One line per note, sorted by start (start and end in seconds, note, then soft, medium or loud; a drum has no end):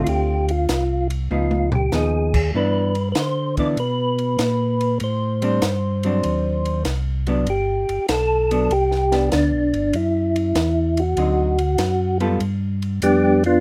0.00 0.65 D3 medium
0.00 0.65 A3 medium
0.00 0.65 C4 medium
0.00 0.65 F4 medium
0.04 0.67 D2 medium
0.04 0.08 F4 medium
0.04 ride medium
0.09 0.51 G4 medium
0.49 1.08 F4 medium
0.49 ride soft
0.69 1.29 C2 medium
0.69 snare medium
0.69 hi-hat pedal medium
0.69 ride medium
1.10 ride medium
1.30 1.90 C#2 medium
1.30 1.69 F3 medium
1.30 1.69 B3 medium
1.30 1.69 D#4 medium
1.30 1.70 F4 medium
1.30 high tom soft
1.51 high tom medium
1.72 1.92 G4 medium
1.72 floor tom medium
1.92 2.52 D#2 medium
1.92 2.31 F3 medium
1.92 2.31 B3 medium
1.92 2.31 D#4 medium
1.92 2.51 G#4 medium
1.92 snare medium
1.92 hi-hat pedal medium
2.34 kick medium
2.34 crash medium
2.54 3.14 G2 medium
2.54 2.92 E3 medium
2.54 2.92 B3 medium
2.54 2.93 D4 medium
2.54 3.09 B4 medium
2.95 ride medium
3.12 3.76 D3 medium
3.12 3.16 B4 medium
3.12 snare medium
3.12 hi-hat pedal medium
3.12 ride medium
3.18 3.56 C5 medium
3.57 3.76 E3 medium
3.57 3.76 B3 medium
3.57 3.77 D4 medium
3.57 3.68 D5 medium
3.57 kick soft
3.57 ride soft
3.77 4.37 B2 medium
3.77 4.98 B4 loud
3.77 ride medium
4.19 ride soft
4.39 4.99 A#2 loud
4.39 snare medium
4.39 hi-hat pedal medium
4.39 ride medium
4.81 ride medium
5.00 5.61 A2 medium
5.00 6.83 C5 medium
5.00 ride medium
5.42 5.60 G3 medium
5.42 5.61 C4 medium
5.42 5.61 D4 medium
5.42 ride medium
5.62 6.22 G2 medium
5.62 snare medium
5.62 hi-hat pedal medium
5.62 ride medium
6.03 6.82 F#3 medium
6.03 6.83 C4 medium
6.03 6.83 D4 medium
6.03 ride medium
6.23 6.84 D#2 medium
6.23 ride medium
6.65 ride soft
6.85 7.46 C2 medium
6.85 snare medium
6.85 hi-hat pedal soft
6.85 ride medium
7.27 7.45 F#3 medium
7.27 7.46 B3 medium
7.27 7.46 D4 medium
7.27 ride soft
7.46 7.86 G1 medium
7.46 8.06 G4 medium
7.46 ride medium
7.89 7.99 G1 soft
7.89 ride medium
8.09 8.69 B1 medium
8.09 8.73 A4 loud
8.09 snare medium
8.09 hi-hat pedal medium
8.09 ride medium
8.51 8.69 F#3 medium
8.51 8.69 B3 medium
8.51 8.70 D4 medium
8.51 ride medium
8.70 9.30 C2 medium
8.70 9.29 G4 loud
8.70 ride medium
8.92 snare soft
9.12 9.90 B3 medium
9.12 9.90 D4 medium
9.12 snare soft
9.12 ride soft
9.32 9.53 D2 loud
9.32 9.96 D4 medium
9.32 snare medium
9.32 hi-hat pedal soft
9.32 ride medium
9.53 9.74 B1 medium
9.73 9.93 G1 medium
9.73 ride soft
9.93 10.54 F#2 medium
9.93 11.01 E4 medium
9.93 ride medium
10.36 ride medium
10.55 11.15 E2 medium
10.55 snare medium
10.55 hi-hat pedal medium
10.55 ride medium
10.97 12.18 F#4 medium
10.97 ride medium
11.16 11.77 D2 medium
11.16 11.55 D3 medium
11.16 11.55 F#3 medium
11.16 11.56 C4 medium
11.16 11.56 D#4 medium
11.16 ride medium
11.59 ride medium
11.78 12.38 F#2 loud
11.78 snare medium
11.78 hi-hat pedal soft
11.78 ride medium
12.20 12.38 G3 medium
12.20 12.38 B3 medium
12.20 12.39 F4 medium
12.20 12.39 A4 medium
12.20 ride soft
12.40 13.00 G2 medium
12.40 ride medium
12.82 ride soft
13.02 13.60 F2 medium
13.02 13.43 G3 medium
13.02 13.43 B3 medium
13.02 13.43 D4 medium
13.02 13.43 G4 medium
13.02 hi-hat pedal medium
13.02 ride medium
13.44 13.60 F3 medium
13.44 13.60 B3 medium
13.44 13.60 D4 medium
13.44 13.60 F4 medium
13.44 ride soft